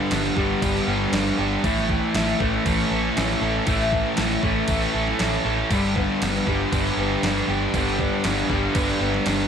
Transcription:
Already playing: distorted electric guitar G2 D3 G3 B3 D4, overdriven electric guitar G2 D3 D4 G4, twelve-string acoustic guitar D4 G4
0.11 fingered electric bass G1, distorted electric guitar G3, twelve-string acoustic guitar B3, overdriven electric guitar B3, snare, crash
0.36 fingered electric bass G1, distorted electric guitar G2 D3 G3 D4, overdriven electric guitar G3, twelve-string acoustic guitar G4, kick
0.61 fingered electric bass G1, overdriven electric guitar B3, twelve-string acoustic guitar D4, distorted electric guitar B4, kick, crash
0.87 fingered electric bass G1, twelve-string acoustic guitar B3, distorted electric guitar B3, overdriven electric guitar G4
1.12 fingered electric bass G1, twelve-string acoustic guitar D4, distorted electric guitar D4, overdriven electric guitar D4, snare, crash
1.38 fingered electric bass G1, distorted electric guitar B3, twelve-string acoustic guitar G4, overdriven electric guitar G4
1.63 fingered electric bass A1, distorted electric guitar A2 E3 A3, overdriven electric guitar A2, twelve-string acoustic guitar E3, kick, crash
1.78 snare
1.89 twelve-string acoustic guitar E3, overdriven electric guitar E3, distorted electric guitar A3, kick
2.15 fingered electric bass A1, distorted electric guitar A3, overdriven electric guitar A3, twelve-string acoustic guitar A3, snare, crash
2.39 fingered electric bass A1, distorted electric guitar A2 E3 A3 C#4, overdriven electric guitar E3, twelve-string acoustic guitar A4, kick
2.65 fingered electric bass A1, overdriven electric guitar A3, twelve-string acoustic guitar C#4, distorted electric guitar A4, kick, crash
2.90 fingered electric bass A1, twelve-string acoustic guitar E3, distorted electric guitar E4, overdriven electric guitar A4
3.17 fingered electric bass A1, overdriven electric guitar C#4, distorted electric guitar C#4, twelve-string acoustic guitar C#4, snare, crash
3.41 fingered electric bass A1, distorted electric guitar E4, overdriven electric guitar A4, twelve-string acoustic guitar A4
3.66 fingered electric bass A1, distorted electric guitar A2 E3 A3, overdriven electric guitar A2, twelve-string acoustic guitar E3, kick, crash
3.92 overdriven electric guitar E3, twelve-string acoustic guitar E3, distorted electric guitar A3, kick
4.16 fingered electric bass A1, distorted electric guitar A3, overdriven electric guitar A3, twelve-string acoustic guitar A3, snare, crash
4.42 fingered electric bass A1, overdriven electric guitar E3, distorted electric guitar E3 A3 C#4, twelve-string acoustic guitar A4, kick
4.46 distorted electric guitar A2
4.68 fingered electric bass A1, overdriven electric guitar A3, twelve-string acoustic guitar C#4, distorted electric guitar A4, kick, crash
4.93 fingered electric bass A1, twelve-string acoustic guitar E3, distorted electric guitar E4, overdriven electric guitar A4
5.08 snare
5.19 fingered electric bass A1, overdriven electric guitar C#4, distorted electric guitar C#4, twelve-string acoustic guitar C#4, snare, crash
5.45 fingered electric bass A1, distorted electric guitar E4, overdriven electric guitar A4, twelve-string acoustic guitar A4
5.70 fingered electric bass G1, distorted electric guitar G2 D3 G3, overdriven electric guitar G2, twelve-string acoustic guitar B3, kick, crash
5.96 overdriven electric guitar D3, twelve-string acoustic guitar B3, distorted electric guitar D4, kick
6.21 fingered electric bass G1, distorted electric guitar G3, overdriven electric guitar B3, twelve-string acoustic guitar B3, snare, crash
6.46 fingered electric bass G1, distorted electric guitar G2 D3 G3 D4, overdriven electric guitar G3, twelve-string acoustic guitar G4, kick
6.72 fingered electric bass G1, overdriven electric guitar B3, twelve-string acoustic guitar D4, distorted electric guitar B4, kick, crash
6.97 fingered electric bass G1, distorted electric guitar B3, twelve-string acoustic guitar B3, overdriven electric guitar G4
7.22 fingered electric bass G1, distorted electric guitar D4, overdriven electric guitar D4, twelve-string acoustic guitar D4, snare, crash
7.48 fingered electric bass G1, distorted electric guitar B3, overdriven electric guitar G4, twelve-string acoustic guitar G4
7.74 fingered electric bass G1, distorted electric guitar G2 D3 G3, overdriven electric guitar G2, twelve-string acoustic guitar B3, kick, crash
7.98 overdriven electric guitar D3, twelve-string acoustic guitar B3, distorted electric guitar D4, kick
8.24 fingered electric bass G1, distorted electric guitar G3, overdriven electric guitar B3, twelve-string acoustic guitar B3, snare, crash
8.49 fingered electric bass G1, distorted electric guitar G2 D3 G3 D4, overdriven electric guitar G3, twelve-string acoustic guitar G4, kick
8.75 fingered electric bass G1, overdriven electric guitar B3, twelve-string acoustic guitar D4, distorted electric guitar B4, kick, crash
8.99 fingered electric bass G1, distorted electric guitar B3, twelve-string acoustic guitar B3, overdriven electric guitar G4
9.14 snare
9.24 fingered electric bass G1, overdriven electric guitar D4, distorted electric guitar D4, twelve-string acoustic guitar D4, snare, crash

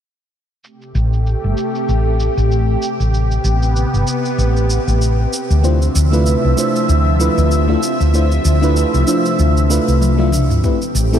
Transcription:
0.63 analog synth pad C3 A3 G4, shaker
0.82 shaker
0.95 fretless electric bass A1, shaker
1.13 shaker
1.26 shaker
1.44 fretless electric bass G1
1.57 shaker
1.75 shaker
1.88 fretless electric bass A1, shaker
2.20 shaker
2.37 fretless electric bass A1, shaker
2.52 shaker
2.82 shaker
3.00 fretless electric bass A1, shaker
3.14 analog synth pad B3, shaker
3.31 shaker
3.44 fretless electric bass A1, shaker
3.63 shaker
3.76 shaker
3.93 fretless electric bass G1, shaker
4.07 shaker
4.25 shaker
4.38 fretless electric bass A1, shaker
4.57 shaker
4.70 shaker
4.87 fretless electric bass A1, shaker
5.02 shaker
5.33 shaker
5.50 fretless electric bass D2, shaker
5.62 analog synth pad F3 E5, fm electric piano A3 D4 E4 F4 C5, shaker
5.82 shaker
5.95 fretless electric bass D2, shaker
6.11 fm electric piano A3 D4 E4 F4 B4, shaker
6.26 shaker
6.44 fretless electric bass C2
6.57 fm electric piano A3 D4 E4 F4 C5, shaker
6.76 shaker
6.89 fretless electric bass D2, shaker
7.19 fm electric piano A3 D4 E4 F4 B4, shaker
7.37 fretless electric bass D2, shaker
7.51 shaker
7.68 fm electric piano A3 D4 E4 F4 E5
7.83 shaker
8.00 fretless electric bass D2, shaker
8.13 fm electric piano A3 D4 E4 F4 C5, shaker
8.32 shaker
8.45 fretless electric bass D2, shaker
8.61 fm electric piano A3 D4 E4 F4 B4, shaker
8.77 shaker
8.94 fretless electric bass C2, shaker
9.07 fm electric piano A3 D4 E4 F4 C5, shaker
9.25 shaker
9.39 fretless electric bass D2, shaker
9.57 shaker
9.69 fm electric piano A3 D4 E4 F4 B4, shaker
9.88 fretless electric bass C2, shaker
10.02 high tom, shaker
10.17 fm electric piano A3 D4 E4 F4 E5, high tom
10.32 mid tom, shaker
10.50 fretless electric bass D2, mid tom, shaker
10.63 analog synth pad C3 A3 G4, fm electric piano A3 C4 E4 G4 B4, kick, shaker
10.82 shaker
10.95 fretless electric bass A1, shaker
11.13 fm electric piano A3 C4 E4 G4 A4, shaker

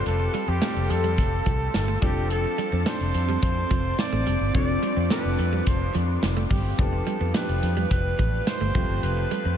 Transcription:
Already playing: grand piano G3 C4 F4 A4, analog synth pad A4 F5 G5 C6
0.06 fingered electric bass F1, flugelhorn A4, closed hi-hat
0.20 muted clean electric guitar stroke
0.34 clean electric guitar G3, closed hi-hat
0.48 fingered electric bass F2, clean electric guitar C4, flugelhorn G4
0.61 grand piano G3 C4 F4 A4, clean electric guitar A3, snare, closed hi-hat
0.76 fingered electric bass F1, closed hi-hat
0.90 fingered electric bass F2, flugelhorn A4, muted clean electric guitar stroke, closed hi-hat
1.04 clean electric guitar G3, closed hi-hat
1.18 fingered electric bass F1, kick, closed hi-hat
1.46 fingered electric bass C2, clean electric guitar F3, kick, closed hi-hat
1.74 fingered electric bass G1, muted clean electric guitar stroke, snare, closed hi-hat
1.88 clean electric guitar A3
2.02 fingered electric bass F1, grand piano F3 C4 D4 A4, clean electric guitar G3, analog synth pad C4 F5 A5 D6, flugelhorn G4, kick, closed hi-hat
2.30 flugelhorn A4, closed hi-hat
2.44 muted clean electric guitar stroke
2.58 clean electric guitar G3, closed hi-hat
2.72 fingered electric bass F2, clean electric guitar C4
2.86 grand piano F3 C4 D4 A4, clean electric guitar A3, flugelhorn C5, snare, closed hi-hat
3.01 fingered electric bass F1, closed hi-hat
3.14 fingered electric bass F2, muted clean electric guitar stroke, closed hi-hat
3.29 clean electric guitar G3, closed hi-hat
3.42 fingered electric bass F2, flugelhorn C5, kick, closed hi-hat
3.71 fingered electric bass F1, clean electric guitar F3, kick, closed hi-hat
3.99 flugelhorn D5, muted clean electric guitar stroke, snare, closed hi-hat
4.13 fingered electric bass A1, clean electric guitar A3
4.27 fingered electric bass F1, clean electric guitar G3, analog synth pad B5, closed hi-hat
4.41 fingered electric bass G1
4.54 fingered electric bass F1, grand piano F3 C4 D4 A4, flugelhorn D5, kick, closed hi-hat
4.69 muted clean electric guitar stroke
4.83 clean electric guitar G3, closed hi-hat
4.97 fingered electric bass F2, clean electric guitar C4
5.10 grand piano F3 C4 D4 A4, clean electric guitar A3, flugelhorn B4, snare, closed hi-hat
5.25 fingered electric bass F1
5.39 fingered electric bass F2, muted clean electric guitar stroke, closed hi-hat
5.53 clean electric guitar G3
5.67 fingered electric bass F1, flugelhorn C5, kick, closed hi-hat
5.95 fingered electric bass F2, clean electric guitar F3, closed hi-hat
6.23 fingered electric bass F1, muted clean electric guitar stroke, snare, closed hi-hat
6.37 clean electric guitar A3
6.51 fingered electric bass G1, clean electric guitar G3, flugelhorn G4, kick, open hi-hat
6.78 fingered electric bass F1, grand piano F3 B3 D4 G4, flugelhorn A4, analog synth pad B4 G5, kick, closed hi-hat
6.93 muted clean electric guitar stroke
7.07 clean electric guitar G3, closed hi-hat
7.21 fingered electric bass F2, clean electric guitar B3
7.34 grand piano F3 B3 D4 G4, clean electric guitar A3, flugelhorn B4, snare, closed hi-hat
7.49 fingered electric bass F1, closed hi-hat
7.63 fingered electric bass F2, muted clean electric guitar stroke, closed hi-hat
7.77 clean electric guitar G3, closed hi-hat
7.91 fingered electric bass F1, flugelhorn B4, kick, closed hi-hat
8.19 fingered electric bass A1, clean electric guitar F3, kick, closed hi-hat
8.47 flugelhorn C5, muted clean electric guitar stroke, snare, closed hi-hat
8.61 fingered electric bass G1, clean electric guitar A3
8.74 fingered electric bass F1, grand piano F3 A3 C4 G4, clean electric guitar G3, analog synth pad A4 A5, kick, closed hi-hat
8.89 fingered electric bass G1
9.03 fingered electric bass F1, flugelhorn B4, closed hi-hat
9.17 muted clean electric guitar stroke
9.31 clean electric guitar G3, closed hi-hat
9.45 fingered electric bass F2, clean electric guitar C4

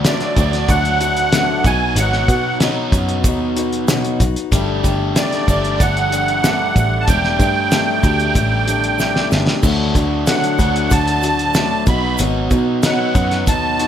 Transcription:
Already playing: overdriven electric guitar D3 F#3 A3 D4 F#4
0.04 steel-string acoustic guitar D3 F#3 A3 D4 F#4, accordion D5, snare, closed hi-hat, shaker
0.20 snare, closed hi-hat
0.36 picked electric bass D2, overdriven electric guitar D3 F#3 A3 D4 F#4, kick, closed hi-hat, shaker
0.53 snare, closed hi-hat
0.68 picked electric bass D2, steel-string acoustic guitar F#3 A3 D4, accordion F#5, kick, closed hi-hat, shaker
0.73 steel-string acoustic guitar F#4
0.85 closed hi-hat
1.01 steel-string acoustic guitar A3 D4 F#4, closed hi-hat, shaker
1.17 closed hi-hat
1.32 steel-string acoustic guitar D3 F#3 A3 D4 F#4, snare, closed hi-hat, shaker
1.63 picked electric bass B1, overdriven electric guitar B2 F#3, steel-string acoustic guitar B3 D#4 F#4, accordion G#5, kick, closed hi-hat, shaker
1.96 picked electric bass G#1, steel-string acoustic guitar B2 F#3 B3 D#4 F#4, accordion F#5, closed hi-hat, shaker
2.13 snare
2.28 picked electric bass B2, steel-string acoustic guitar B3 D#4 F#4, kick, closed hi-hat, shaker
2.60 steel-string acoustic guitar B2 F#3 B3 D#4 F#4, snare, closed hi-hat, shaker
2.92 picked electric bass F#2, kick, closed hi-hat, shaker
3.09 closed hi-hat
3.24 picked electric bass D#2, steel-string acoustic guitar F#3 B3 D#4 F#4, kick, closed hi-hat, shaker
3.56 steel-string acoustic guitar B3 D#4 F#4, closed hi-hat, shaker
3.73 closed hi-hat
3.88 steel-string acoustic guitar B2 F#3 B3 D#4 F#4, snare, closed hi-hat, shaker
4.04 closed hi-hat
4.20 picked electric bass B1, steel-string acoustic guitar B3 D#4 F#4, kick, closed hi-hat, shaker
4.36 closed hi-hat
4.52 picked electric bass G1, steel-string acoustic guitar G3 A3 D4 G4, kick, closed hi-hat, shaker
4.83 picked electric bass G1, steel-string acoustic guitar A3 D4 G4, kick, closed hi-hat, shaker
5.15 steel-string acoustic guitar G3 A3 D4 G4, accordion D5, snare, closed hi-hat, shaker
5.32 snare, closed hi-hat
5.48 picked electric bass G1, overdriven electric guitar G3 A3 D4 G4, kick, closed hi-hat, shaker
5.64 closed hi-hat
5.78 picked electric bass G1, steel-string acoustic guitar G3 A3 D4 G4, accordion F#5, kick, closed hi-hat, shaker
5.97 closed hi-hat
6.10 steel-string acoustic guitar A3 D4 G4, closed hi-hat, shaker
6.28 closed hi-hat
6.43 steel-string acoustic guitar G3 A3 D4 G4, snare, closed hi-hat, shaker
6.74 picked electric bass A1, steel-string acoustic guitar A3 D4 G4, kick, closed hi-hat, shaker
7.01 accordion A5
7.07 picked electric bass E1, steel-string acoustic guitar G3 A3 D4 G4, accordion G5, kick, closed hi-hat, shaker
7.24 snare
7.39 picked electric bass G2, steel-string acoustic guitar A3 D4 G4, accordion G5, kick, closed hi-hat, shaker
7.71 steel-string acoustic guitar G3 A3 D4 G4, snare, closed hi-hat, shaker
8.03 picked electric bass D2, overdriven electric guitar G3 A3 D4 G4, kick, closed hi-hat, shaker
8.20 closed hi-hat
8.34 picked electric bass A1, steel-string acoustic guitar G3 A3 D4 G4, kick, closed hi-hat, shaker
8.67 steel-string acoustic guitar A3 D4 G4, closed hi-hat, shaker
8.84 closed hi-hat
8.98 steel-string acoustic guitar G3 A3 D4 G4, snare, shaker
9.16 snare
9.31 picked electric bass G1, steel-string acoustic guitar A3 D4 G4, snare, shaker
9.47 snare
9.62 picked electric bass D2, steel-string acoustic guitar D3 F#3 A3 D4 F#4, kick, crash, shaker
9.94 picked electric bass D2, steel-string acoustic guitar A3 D4 F#4, kick, closed hi-hat, shaker
10.27 steel-string acoustic guitar D3 F#3 A3 D4 F#4, accordion F#5, snare, closed hi-hat, shaker
10.44 closed hi-hat
10.59 picked electric bass D2, overdriven electric guitar D3 F#3 A3 D4 F#4, kick, closed hi-hat, shaker
10.76 closed hi-hat
10.91 picked electric bass D2, steel-string acoustic guitar F#3 A3 D4 F#4, accordion A5, kick, closed hi-hat, shaker
11.08 closed hi-hat
11.22 steel-string acoustic guitar A3 D4 F#4, closed hi-hat, shaker
11.39 closed hi-hat
11.54 steel-string acoustic guitar D3 F#3 A3 D4 F#4, snare, closed hi-hat, shaker
11.87 picked electric bass B1, overdriven electric guitar B2 F#3, steel-string acoustic guitar B3 D#4 F#4, accordion B5, kick, closed hi-hat, shaker
12.18 picked electric bass G#1, steel-string acoustic guitar B2 F#3 B3 D#4 F#4, closed hi-hat, shaker
12.50 picked electric bass B2, steel-string acoustic guitar B3 D#4 F#4, kick, closed hi-hat, shaker
12.83 steel-string acoustic guitar B2 F#3 B3 D#4 F#4, accordion F#5, snare, closed hi-hat, shaker
13.15 picked electric bass F#2, kick, closed hi-hat, shaker
13.31 snare, closed hi-hat
13.47 picked electric bass D#2, steel-string acoustic guitar F#3 B3 D#4 F#4, accordion A5, kick, closed hi-hat, shaker
13.79 steel-string acoustic guitar B3 D#4 F#4, closed hi-hat

